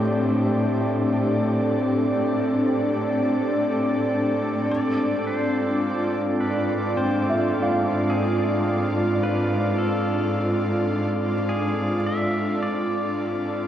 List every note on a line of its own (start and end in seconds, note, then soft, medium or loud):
0.00 4.64 A2 medium
0.00 4.69 A2 medium
0.00 4.69 A3 medium
0.00 6.46 C4 medium
0.00 13.67 C4 medium
0.00 13.67 D4 medium
0.00 4.70 G4 medium
0.00 13.67 A4 medium
0.00 13.67 D5 medium
4.70 13.67 G#2 medium
4.70 5.27 D5 medium
5.20 13.67 F4 medium
5.27 6.40 C5 medium
6.40 6.97 B4 medium
6.96 11.32 C4 soft
6.96 8.13 C5 medium
7.30 11.63 E5 soft
7.63 11.94 F5 soft
8.10 8.90 G#4 medium
9.23 9.78 B4 medium
9.78 11.45 A4 medium
11.49 12.07 G#4 medium
12.06 12.62 E5 medium
12.63 13.67 D5 medium